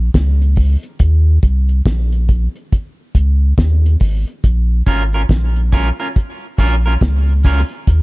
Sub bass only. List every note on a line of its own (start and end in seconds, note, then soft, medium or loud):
0.15 0.76 C#2 loud
1.00 1.39 D#2 loud
1.43 1.81 C2 medium
1.86 2.48 A#1 loud
3.15 3.53 C#2 loud
3.58 3.96 D#2 loud
4.01 4.25 G#1 medium
4.44 4.82 A#1 loud
4.87 5.25 G#1 medium
5.29 5.91 A#1 medium
6.59 6.97 A#1 loud
7.02 7.63 C#2 loud
7.88 8.02 D#2 loud